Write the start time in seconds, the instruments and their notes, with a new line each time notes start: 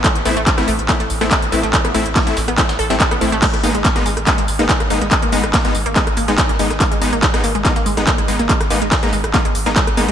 0.04 synth arpeggio sound A3, kick, clap, closed hi-hat, tambourine
0.15 sub bass A1, closed hi-hat
0.25 sub bass A1, supersaw synth A3 C4 E4, synth arpeggio sound B3, open hi-hat, tambourine
0.37 sub bass A1, synth arpeggio sound A3, closed hi-hat
0.47 kick, snare, clap, closed hi-hat, tambourine
0.58 sub bass A1, supersaw synth A3 C4 E4, synth arpeggio sound B3, cross-stick, snare, closed hi-hat
0.68 sub bass A1, synth arpeggio sound A3, open hi-hat, tambourine
0.79 sub bass A1, closed hi-hat
0.89 supersaw synth A3 C4 E4, synth arpeggio sound B3, kick, clap, closed hi-hat, tambourine
1.00 sub bass A1, synth arpeggio sound A3, closed hi-hat
1.10 sub bass A1, open hi-hat, tambourine
1.21 sub bass A1, supersaw synth A3 C4 E4, synth arpeggio sound B3, cross-stick, closed hi-hat
1.31 synth arpeggio sound A3, kick, snare, clap, closed hi-hat, tambourine
1.42 sub bass A1, closed hi-hat
1.52 sub bass A1, supersaw synth A3 C4 E4, synth arpeggio sound B3, open hi-hat, tambourine
1.63 sub bass A1, synth arpeggio sound A3, snare, closed hi-hat
1.73 kick, clap, closed hi-hat, tambourine
1.84 sub bass A1, synth arpeggio sound B3, cross-stick, closed hi-hat
1.94 sub bass A1, supersaw synth A3 C4 E4, synth arpeggio sound A3, open hi-hat, tambourine
2.06 sub bass A1, closed hi-hat
2.16 synth arpeggio sound B3, kick, snare, clap, closed hi-hat, open hi-hat
2.27 sub bass A1, supersaw synth A3 C4 E4, synth arpeggio sound A3, closed hi-hat
2.37 sub bass A1, snare, open hi-hat, tambourine
2.48 sub bass A1, synth arpeggio sound B3, cross-stick, closed hi-hat
2.58 supersaw synth A3 C4 E4, synth arpeggio sound A3, kick, clap, closed hi-hat, tambourine
2.69 sub bass A1, snare, closed hi-hat, tambourine
2.79 sub bass A1, synth arpeggio sound A4, open hi-hat
2.90 sub bass A1, synth arpeggio sound G3, supersaw synth A3 C4 E4, closed hi-hat, tambourine
3.00 kick, snare, clap, closed hi-hat, tambourine
3.11 sub bass A1, synth arpeggio sound B3, cross-stick, closed hi-hat
3.21 sub bass A1, supersaw synth A3 C4 E4, synth arpeggio sound A3, open hi-hat, tambourine
3.32 sub bass A1, synth arpeggio sound A3, snare, closed hi-hat
3.42 synth arpeggio sound G#3, kick, clap, closed hi-hat, crash, tambourine
3.54 sub bass G#1, cross-stick, closed hi-hat
3.63 sub bass G#1, supersaw synth G#3 B3 D#4, synth arpeggio sound A#3, open hi-hat, tambourine
3.75 sub bass G#1, synth arpeggio sound G#3, closed hi-hat
3.85 kick, snare, clap, closed hi-hat, tambourine
3.96 sub bass G#1, supersaw synth G#3 B3 D#4, synth arpeggio sound A#3, snare, closed hi-hat
4.06 sub bass G#1, synth arpeggio sound G#3, open hi-hat, tambourine
4.17 sub bass G#1, cross-stick, closed hi-hat
4.27 supersaw synth G#3 B3 D#4, synth arpeggio sound A#3, kick, clap, closed hi-hat, tambourine
4.38 sub bass G#1, synth arpeggio sound G#3, closed hi-hat
4.48 sub bass G#1, open hi-hat, tambourine
4.59 sub bass G#1, supersaw synth G#3 B3 D#4, synth arpeggio sound A#3, closed hi-hat
4.69 synth arpeggio sound G#3, kick, snare, clap, closed hi-hat, tambourine
4.80 sub bass G#1, cross-stick, closed hi-hat
4.90 sub bass G#1, supersaw synth G#3 B3 D#4, synth arpeggio sound A#3, open hi-hat, tambourine
5.01 sub bass G#1, synth arpeggio sound G#3, snare, closed hi-hat
5.11 kick, clap, closed hi-hat, tambourine
5.22 sub bass G#1, synth arpeggio sound A#3, closed hi-hat
5.32 sub bass G#1, supersaw synth G#3 B3 D#4, synth arpeggio sound G#3, open hi-hat, tambourine
5.44 sub bass G#1, cross-stick, closed hi-hat
5.54 synth arpeggio sound A#3, kick, snare, clap, closed hi-hat, open hi-hat
5.65 sub bass G#1, synth arpeggio sound G#3, supersaw synth G#3 B3 D#4, closed hi-hat
5.75 sub bass G#1, open hi-hat, tambourine
5.86 sub bass G#1, synth arpeggio sound A#3, closed hi-hat
5.96 synth arpeggio sound G#3, supersaw synth G#3 B3 D#4, kick, clap, closed hi-hat, tambourine
6.07 sub bass G#1, cross-stick, closed hi-hat
6.17 sub bass G#1, synth arpeggio sound A#3, open hi-hat, tambourine
6.28 sub bass G#1, synth arpeggio sound G#3, supersaw synth G#3 B3 D#4, snare, closed hi-hat
6.38 kick, snare, clap, closed hi-hat, tambourine
6.49 sub bass G#1, synth arpeggio sound A#3, closed hi-hat
6.59 sub bass G#1, synth arpeggio sound G#3, supersaw synth G#3 B3 D#4, open hi-hat, tambourine
6.70 sub bass G#1, cross-stick, snare, closed hi-hat
6.80 synth arpeggio sound A#3, kick, clap, closed hi-hat, tambourine
6.91 sub bass G#1, synth arpeggio sound G#3, closed hi-hat
7.02 sub bass G#1, supersaw synth G#3 B3 D#4, open hi-hat, tambourine
7.13 sub bass G#1, synth arpeggio sound A#3, closed hi-hat
7.23 synth arpeggio sound G#3, kick, snare, clap, closed hi-hat, tambourine
7.34 sub bass G#1, supersaw synth G#3 B3 D#4, cross-stick, snare, closed hi-hat
7.44 sub bass G#1, synth arpeggio sound A#3, open hi-hat, tambourine
7.55 sub bass G#1, synth arpeggio sound G#3, closed hi-hat
7.65 supersaw synth G#3 B3 D#4, kick, clap, closed hi-hat, tambourine
7.76 sub bass G#1, synth arpeggio sound A#3, closed hi-hat
7.86 sub bass G#1, synth arpeggio sound G#3, open hi-hat, tambourine
7.97 sub bass G#1, supersaw synth G#3 B3 D#4, cross-stick, closed hi-hat
8.07 synth arpeggio sound A#3, kick, snare, clap, closed hi-hat, tambourine
8.18 sub bass G#1, synth arpeggio sound G#3, closed hi-hat
8.28 sub bass G#1, supersaw synth G#3 B3 D#4, open hi-hat, tambourine
8.39 sub bass G#1, synth arpeggio sound A#3, snare, closed hi-hat
8.49 synth arpeggio sound G#3, kick, clap, closed hi-hat, tambourine
8.61 sub bass G#1, cross-stick, closed hi-hat
8.70 sub bass G#1, supersaw synth G#3 B3 D#4, synth arpeggio sound A#3, open hi-hat, tambourine
8.82 sub bass G#1, synth arpeggio sound G#3, closed hi-hat
8.92 kick, snare, clap, closed hi-hat, open hi-hat
9.03 sub bass G#1, supersaw synth G#3 B3 D#4, synth arpeggio sound A#3, closed hi-hat
9.13 sub bass G#1, synth arpeggio sound G#3, open hi-hat, tambourine
9.24 sub bass G#1, cross-stick, closed hi-hat
9.34 supersaw synth G#3 B3 D#4, synth arpeggio sound A#3, kick, clap, closed hi-hat, tambourine
9.45 sub bass G#1, synth arpeggio sound G#3, closed hi-hat
9.55 sub bass G#1, open hi-hat, tambourine
9.66 sub bass G#1, supersaw synth G#3 B3 D#4, synth arpeggio sound A#3, snare, closed hi-hat
9.76 synth arpeggio sound G#3, kick, snare, clap, closed hi-hat, tambourine
9.87 sub bass G#1, cross-stick, closed hi-hat
9.97 sub bass G#1, supersaw synth G#3 B3 D#4, synth arpeggio sound A#3, open hi-hat, tambourine
10.08 sub bass G#1, synth arpeggio sound G#3, snare, closed hi-hat